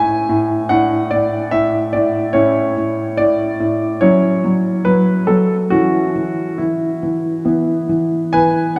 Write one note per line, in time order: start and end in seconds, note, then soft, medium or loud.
0.00 0.28 A2 soft
0.00 0.66 C#4 soft
0.00 0.67 E4 soft
0.00 0.38 G#5 medium
0.29 0.69 A2 medium
0.69 1.10 A2 medium
0.69 2.32 D4 soft
0.69 1.07 F#5 medium
1.11 1.51 A2 medium
1.11 1.48 D5 medium
1.51 1.92 A2 medium
1.51 1.77 E5 medium
1.93 2.33 A2 medium
1.93 2.31 D5 medium
2.33 2.75 A2 medium
2.33 3.96 C#4 soft
2.33 3.96 E4 soft
2.33 3.17 C#5 medium
2.77 3.17 A2 soft
3.17 3.58 A2 soft
3.17 4.01 D5 medium
3.60 4.00 A2 soft
4.01 4.42 F#3 medium
4.01 5.68 C#4 soft
4.01 5.68 E4 soft
4.01 4.51 C#5 medium
4.44 4.85 F#3 soft
4.85 5.27 F#3 soft
4.85 5.28 B4 medium
5.27 5.70 F#3 soft
5.27 5.53 A4 medium
5.70 6.14 E3 soft
5.70 7.44 C#4 soft
5.70 6.57 E4 soft
5.70 6.60 F#4 medium
6.16 6.58 E3 soft
6.58 7.01 E3 soft
6.58 7.43 E4 soft
7.03 7.44 E3 soft
7.45 7.88 E3 medium
7.45 8.79 B3 soft
7.45 8.79 E4 soft
7.89 8.32 E3 soft
8.33 8.76 E3 soft
8.33 8.76 B4 medium
8.33 8.74 G#5 medium